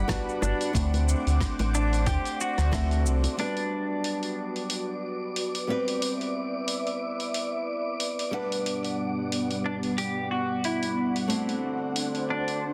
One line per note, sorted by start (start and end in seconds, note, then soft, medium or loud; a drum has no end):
0.00 0.73 G3 medium
0.00 3.37 D5 medium
0.00 3.36 F#5 medium
0.00 0.73 B5 medium
0.00 3.38 D6 medium
0.08 0.71 B3 medium
0.08 0.71 D4 medium
0.08 0.71 F#4 medium
0.08 0.72 G4 medium
0.08 0.72 F#5 loud
0.08 kick loud
0.08 cross-stick medium
0.08 open hi-hat medium
0.08 cabasa soft
0.29 cabasa soft
0.42 0.53 G1 medium
0.42 0.73 D4 loud
0.42 high bongo medium
0.42 cabasa medium
0.61 open hi-hat soft
0.61 cabasa soft
0.73 1.15 D2 loud
0.73 2.68 A3 medium
0.73 2.69 C4 medium
0.73 2.69 D4 medium
0.73 3.37 C5 medium
0.73 2.70 C5 loud
0.73 2.70 F#5 medium
0.73 3.37 D6 medium
0.73 kick loud
0.73 open hi-hat medium
0.73 cabasa soft
0.94 open hi-hat soft
0.94 high bongo soft
0.94 cabasa soft
1.09 cabasa medium
1.27 1.45 D2 medium
1.27 open hi-hat soft
1.27 cabasa soft
1.41 kick loud
1.41 cross-stick medium
1.41 open hi-hat medium
1.41 cabasa soft
1.59 2.08 A1 medium
1.59 open hi-hat soft
1.59 high bongo medium
1.59 cabasa soft
1.75 2.08 D4 medium
1.75 cabasa medium
1.93 open hi-hat soft
1.93 cabasa soft
2.06 2.18 D2 medium
2.06 2.41 G4 loud
2.06 kick loud
2.06 open hi-hat medium
2.06 high bongo medium
2.06 cabasa soft
2.25 open hi-hat soft
2.25 cabasa soft
2.41 3.02 F#4 medium
2.41 cabasa medium
2.58 3.06 D2 loud
2.58 cross-stick soft
2.58 open hi-hat soft
2.58 cabasa soft
2.71 3.35 A3 medium
2.71 3.35 C4 medium
2.71 3.35 D4 medium
2.71 3.35 F#4 medium
2.71 3.35 E5 loud
2.71 kick medium
2.71 cross-stick medium
2.71 open hi-hat medium
2.71 high bongo medium
2.71 cabasa soft
2.91 open hi-hat soft
2.91 cabasa soft
3.05 3.27 C2 medium
3.05 cabasa medium
3.23 open hi-hat soft
3.23 high bongo soft
3.23 cabasa soft
3.37 5.65 G3 medium
3.37 5.65 B3 medium
3.37 5.66 D4 medium
3.37 5.67 F#4 medium
3.37 5.68 F#4 medium
3.37 5.67 B4 medium
3.37 8.30 B4 medium
3.37 12.62 D5 medium
3.37 12.62 D6 medium
3.37 open hi-hat medium
3.57 open hi-hat soft
4.04 open hi-hat medium
4.23 open hi-hat soft
4.56 open hi-hat soft
4.70 open hi-hat medium
5.36 open hi-hat medium
5.55 open hi-hat soft
5.67 8.29 G3 medium
5.67 8.29 B3 medium
5.67 8.29 C4 medium
5.67 8.30 B4 medium
5.67 8.31 E5 medium
5.88 open hi-hat soft
6.02 open hi-hat medium
6.21 open hi-hat soft
6.68 open hi-hat medium
6.87 open hi-hat soft
7.20 open hi-hat soft
7.34 open hi-hat medium
8.00 open hi-hat medium
8.19 open hi-hat soft
8.31 11.25 G3 medium
8.31 11.27 G3 medium
8.31 8.34 B3 medium
8.31 11.27 B3 medium
8.31 11.26 D4 medium
8.31 11.27 B4 medium
8.31 12.73 F#5 medium
8.31 11.27 F#5 medium
8.52 open hi-hat soft
8.66 open hi-hat medium
8.84 open hi-hat soft
9.32 open hi-hat medium
9.51 open hi-hat soft
9.66 9.74 D4 medium
9.83 open hi-hat soft
9.98 10.29 G4 loud
9.98 open hi-hat medium
10.31 10.65 F#4 medium
10.64 11.12 E4 medium
10.64 open hi-hat medium
10.83 open hi-hat soft
11.16 open hi-hat soft
11.28 12.61 A3 medium
11.28 12.61 C4 medium
11.28 12.73 D4 medium
11.28 12.62 D4 medium
11.28 12.62 F#4 medium
11.28 12.73 C5 medium
11.28 12.62 C5 medium
11.28 open hi-hat medium
11.49 open hi-hat soft
11.96 open hi-hat medium
12.15 open hi-hat soft
12.30 12.63 D4 medium
12.48 open hi-hat soft